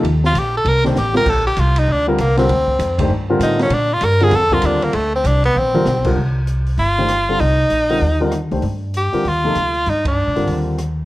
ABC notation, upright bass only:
X:1
M:4/4
L:1/8
Q:"Swing" 1/4=195
K:Cdor
V:1 name="Upright bass" clef=bass
E,,2 B,,,2 C,,2 A,,,2 | B,,,2 C,,2 D,,2 C,,2 | D,,2 F,,2 G,,2 A,,2 | B,,2 G,,2 F,,2 E,,2 |
D,,2 C,,2 B,,,2 =B,,,2 | C,,4 G,,,4 | C,,2 B,,,2 E,,3 _D,, | G,,3 z E,,2 D,,2 |
G,,2- (3G,, B,, G,, E,,4 |]